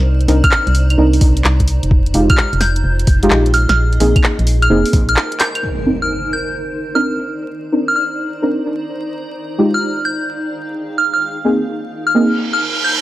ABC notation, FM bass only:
X:1
M:4/4
L:1/16
Q:"Swing 16ths" 1/4=129
K:Cm
V:1 name="FM bass" clef=bass
C,,2 C,, z2 C,,3 C,,2 C,,2 C,,3 F,,,- | F,,,2 F,,, z2 F,,,3 F,,,2 F,,,2 B,,,3 B,,,- | B,,,2 B,,, z2 B,,,3 F,,, z B,,,2 z4 | z16 |
z16 | z16 | z16 |]